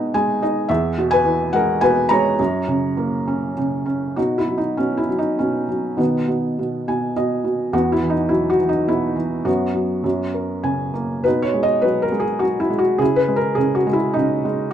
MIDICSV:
0, 0, Header, 1, 2, 480
1, 0, Start_track
1, 0, Key_signature, 5, "major"
1, 0, Tempo, 566572
1, 588, Time_signature, 3, 2, 24, 8
1, 2515, Tempo, 601202
1, 5395, Tempo, 576369
1, 7795, Tempo, 596421
1, 9715, Tempo, 581395
1, 12101, End_track
2, 0, Start_track
2, 0, Title_t, "Felt piano"
2, 0, Program_c, 0, 0
2, 0, Control_c, 0, 64, 127
2, 0, Note_on_c, 0, 47, 60
2, 0, Note_on_c, 0, 56, 48
2, 0, Note_on_c, 0, 59, 50
2, 0, Note_on_c, 0, 63, 55
2, 0, Note_on_c, 0, 71, 50
2, 0, Note_on_c, 0, 80, 64
2, 108, Note_off_c, 0, 80, 0
2, 109, Note_off_c, 0, 56, 0
2, 121, Note_on_c, 0, 80, 68
2, 122, Note_on_c, 0, 56, 52
2, 329, Note_off_c, 0, 71, 0
2, 338, Note_off_c, 0, 80, 0
2, 345, Note_off_c, 0, 63, 0
2, 358, Note_on_c, 0, 63, 54
2, 362, Note_on_c, 0, 75, 62
2, 549, Note_off_c, 0, 47, 0
2, 560, Note_off_c, 0, 59, 0
2, 577, Note_off_c, 0, 75, 0
2, 578, Note_off_c, 0, 56, 0
2, 581, Note_on_c, 0, 76, 74
2, 584, Note_off_c, 0, 63, 0
2, 589, Note_on_c, 0, 40, 62
2, 599, Control_c, 0, 64, 0
2, 600, Note_on_c, 0, 68, 59
2, 765, Control_c, 0, 64, 127
2, 832, Note_on_c, 0, 47, 56
2, 927, Note_off_c, 0, 68, 0
2, 938, Note_on_c, 0, 80, 94
2, 953, Note_off_c, 0, 76, 0
2, 957, Note_on_c, 0, 71, 63
2, 1057, Note_on_c, 0, 52, 54
2, 1285, Note_off_c, 0, 71, 0
2, 1294, Note_on_c, 0, 78, 80
2, 1300, Note_on_c, 0, 56, 53
2, 1311, Note_off_c, 0, 80, 0
2, 1316, Note_on_c, 0, 70, 64
2, 1527, Note_off_c, 0, 47, 0
2, 1533, Note_off_c, 0, 70, 0
2, 1535, Note_on_c, 0, 80, 87
2, 1540, Note_on_c, 0, 47, 51
2, 1546, Note_off_c, 0, 78, 0
2, 1553, Note_on_c, 0, 71, 68
2, 1770, Note_on_c, 0, 82, 88
2, 1772, Note_off_c, 0, 71, 0
2, 1774, Note_off_c, 0, 56, 0
2, 1786, Note_off_c, 0, 80, 0
2, 1786, Note_on_c, 0, 56, 54
2, 1786, Note_on_c, 0, 73, 69
2, 1991, Note_off_c, 0, 40, 0
2, 1992, Note_off_c, 0, 52, 0
2, 2008, Note_off_c, 0, 47, 0
2, 2019, Note_off_c, 0, 56, 0
2, 2027, Note_on_c, 0, 42, 59
2, 2038, Control_c, 0, 64, 0
2, 2204, Control_c, 0, 64, 127
2, 2269, Note_on_c, 0, 49, 47
2, 2516, Note_on_c, 0, 58, 49
2, 2760, Note_on_c, 0, 61, 52
2, 2953, Note_off_c, 0, 82, 0
2, 2960, Note_off_c, 0, 73, 0
2, 2987, Note_off_c, 0, 49, 0
2, 2999, Note_on_c, 0, 49, 48
2, 3212, Note_off_c, 0, 61, 0
2, 3223, Note_on_c, 0, 61, 48
2, 3446, Note_off_c, 0, 42, 0
2, 3448, Note_off_c, 0, 58, 0
2, 3464, Note_off_c, 0, 61, 0
2, 3466, Note_off_c, 0, 49, 0
2, 3469, Note_on_c, 0, 66, 59
2, 3474, Note_on_c, 0, 47, 41
2, 3477, Note_on_c, 0, 63, 44
2, 3487, Control_c, 0, 64, 0
2, 3632, Control_c, 0, 64, 127
2, 3640, Note_off_c, 0, 66, 0
2, 3641, Note_on_c, 0, 64, 57
2, 3719, Note_on_c, 0, 54, 36
2, 3786, Note_off_c, 0, 63, 0
2, 3798, Note_on_c, 0, 63, 55
2, 3807, Note_off_c, 0, 64, 0
2, 3955, Note_off_c, 0, 47, 0
2, 3956, Note_on_c, 0, 61, 59
2, 3967, Note_off_c, 0, 63, 0
2, 3967, Note_on_c, 0, 47, 37
2, 4116, Note_on_c, 0, 64, 59
2, 4126, Note_off_c, 0, 61, 0
2, 4197, Note_off_c, 0, 54, 0
2, 4209, Note_on_c, 0, 54, 37
2, 4284, Note_on_c, 0, 63, 59
2, 4286, Note_off_c, 0, 64, 0
2, 4433, Note_off_c, 0, 63, 0
2, 4436, Note_off_c, 0, 47, 0
2, 4446, Note_on_c, 0, 61, 58
2, 4448, Note_on_c, 0, 47, 39
2, 4671, Note_off_c, 0, 54, 0
2, 4683, Note_on_c, 0, 54, 37
2, 4907, Note_off_c, 0, 47, 0
2, 4912, Note_on_c, 0, 51, 35
2, 4913, Note_off_c, 0, 54, 0
2, 4916, Note_on_c, 0, 59, 48
2, 4919, Note_on_c, 0, 47, 45
2, 4932, Control_c, 0, 64, 0
2, 4935, Note_off_c, 0, 61, 0
2, 5057, Control_c, 0, 64, 127
2, 5148, Note_off_c, 0, 47, 0
2, 5160, Note_on_c, 0, 47, 39
2, 5392, Note_off_c, 0, 47, 0
2, 5405, Note_on_c, 0, 47, 38
2, 5636, Note_off_c, 0, 47, 0
2, 5649, Note_on_c, 0, 47, 40
2, 5649, Note_on_c, 0, 80, 52
2, 5842, Note_off_c, 0, 51, 0
2, 5845, Note_off_c, 0, 59, 0
2, 5868, Note_off_c, 0, 80, 0
2, 5873, Note_off_c, 0, 47, 0
2, 5885, Note_on_c, 0, 47, 39
2, 5886, Note_on_c, 0, 75, 52
2, 6105, Note_off_c, 0, 47, 0
2, 6117, Note_on_c, 0, 47, 40
2, 6326, Note_off_c, 0, 75, 0
2, 6349, Note_off_c, 0, 47, 0
2, 6356, Note_on_c, 0, 40, 50
2, 6359, Note_on_c, 0, 66, 70
2, 6364, Note_on_c, 0, 59, 51
2, 6368, Control_c, 0, 64, 0
2, 6516, Note_on_c, 0, 64, 69
2, 6522, Note_off_c, 0, 66, 0
2, 6532, Control_c, 0, 64, 127
2, 6596, Note_on_c, 0, 52, 40
2, 6661, Note_on_c, 0, 63, 65
2, 6680, Note_off_c, 0, 64, 0
2, 6821, Note_on_c, 0, 64, 67
2, 6833, Note_off_c, 0, 63, 0
2, 6840, Note_on_c, 0, 54, 45
2, 6993, Note_off_c, 0, 64, 0
2, 6995, Note_on_c, 0, 66, 71
2, 7046, Note_off_c, 0, 59, 0
2, 7063, Note_off_c, 0, 52, 0
2, 7076, Note_on_c, 0, 52, 44
2, 7154, Note_on_c, 0, 63, 61
2, 7159, Note_off_c, 0, 66, 0
2, 7309, Note_on_c, 0, 47, 43
2, 7317, Note_on_c, 0, 64, 70
2, 7319, Note_off_c, 0, 63, 0
2, 7536, Note_off_c, 0, 52, 0
2, 7549, Note_on_c, 0, 52, 42
2, 7762, Note_off_c, 0, 40, 0
2, 7769, Note_off_c, 0, 54, 0
2, 7778, Note_off_c, 0, 47, 0
2, 7785, Note_off_c, 0, 52, 0
2, 7788, Note_on_c, 0, 42, 49
2, 7788, Note_on_c, 0, 66, 64
2, 7794, Note_on_c, 0, 59, 44
2, 7805, Control_c, 0, 64, 0
2, 7810, Note_off_c, 0, 64, 0
2, 7945, Control_c, 0, 64, 127
2, 8026, Note_on_c, 0, 54, 42
2, 8250, Note_off_c, 0, 42, 0
2, 8259, Note_off_c, 0, 54, 0
2, 8262, Note_on_c, 0, 42, 53
2, 8278, Control_c, 0, 64, 0
2, 8399, Control_c, 0, 64, 127
2, 8506, Note_on_c, 0, 70, 40
2, 8743, Note_on_c, 0, 80, 55
2, 8744, Note_on_c, 0, 49, 42
2, 8961, Note_off_c, 0, 66, 0
2, 8963, Note_off_c, 0, 59, 0
2, 8986, Note_on_c, 0, 58, 42
2, 9201, Note_off_c, 0, 80, 0
2, 9205, Note_off_c, 0, 42, 0
2, 9214, Note_off_c, 0, 70, 0
2, 9218, Note_off_c, 0, 49, 0
2, 9225, Note_off_c, 0, 58, 0
2, 9226, Note_on_c, 0, 71, 65
2, 9236, Note_on_c, 0, 47, 47
2, 9244, Note_on_c, 0, 63, 45
2, 9249, Control_c, 0, 64, 0
2, 9376, Control_c, 0, 64, 127
2, 9377, Note_on_c, 0, 73, 68
2, 9397, Note_off_c, 0, 71, 0
2, 9469, Note_on_c, 0, 56, 39
2, 9542, Note_on_c, 0, 75, 71
2, 9552, Note_off_c, 0, 73, 0
2, 9693, Note_on_c, 0, 71, 67
2, 9705, Note_on_c, 0, 54, 44
2, 9713, Note_off_c, 0, 75, 0
2, 9862, Note_on_c, 0, 70, 65
2, 9870, Note_off_c, 0, 71, 0
2, 9926, Note_off_c, 0, 63, 0
2, 9930, Note_off_c, 0, 56, 0
2, 9942, Note_on_c, 0, 56, 43
2, 10007, Note_on_c, 0, 68, 68
2, 10034, Note_off_c, 0, 70, 0
2, 10169, Note_on_c, 0, 66, 74
2, 10178, Note_off_c, 0, 54, 0
2, 10186, Note_off_c, 0, 68, 0
2, 10191, Note_on_c, 0, 54, 41
2, 10338, Note_on_c, 0, 64, 68
2, 10346, Note_off_c, 0, 66, 0
2, 10412, Note_off_c, 0, 56, 0
2, 10424, Note_on_c, 0, 56, 45
2, 10492, Note_on_c, 0, 66, 71
2, 10511, Note_off_c, 0, 64, 0
2, 10639, Note_off_c, 0, 47, 0
2, 10656, Note_off_c, 0, 54, 0
2, 10657, Note_on_c, 0, 68, 74
2, 10660, Note_off_c, 0, 56, 0
2, 10660, Note_on_c, 0, 49, 54
2, 10667, Note_off_c, 0, 66, 0
2, 10682, Note_on_c, 0, 64, 52
2, 10685, Control_c, 0, 64, 0
2, 10803, Note_on_c, 0, 71, 75
2, 10804, Control_c, 0, 64, 127
2, 10829, Note_off_c, 0, 68, 0
2, 10903, Note_on_c, 0, 56, 49
2, 10965, Note_off_c, 0, 71, 0
2, 10969, Note_on_c, 0, 70, 71
2, 11124, Note_on_c, 0, 68, 74
2, 11134, Note_off_c, 0, 49, 0
2, 11145, Note_off_c, 0, 70, 0
2, 11146, Note_on_c, 0, 49, 49
2, 11288, Note_on_c, 0, 66, 71
2, 11302, Note_off_c, 0, 68, 0
2, 11362, Note_off_c, 0, 64, 0
2, 11374, Note_off_c, 0, 56, 0
2, 11386, Note_on_c, 0, 56, 49
2, 11438, Note_on_c, 0, 64, 72
2, 11464, Note_off_c, 0, 66, 0
2, 11607, Note_on_c, 0, 63, 72
2, 11616, Note_off_c, 0, 49, 0
2, 11620, Note_off_c, 0, 64, 0
2, 11628, Note_on_c, 0, 49, 50
2, 11854, Note_off_c, 0, 56, 0
2, 11866, Note_on_c, 0, 56, 52
2, 12069, Note_off_c, 0, 63, 0
2, 12098, Note_off_c, 0, 49, 0
2, 12101, Note_off_c, 0, 56, 0
2, 12101, End_track
0, 0, End_of_file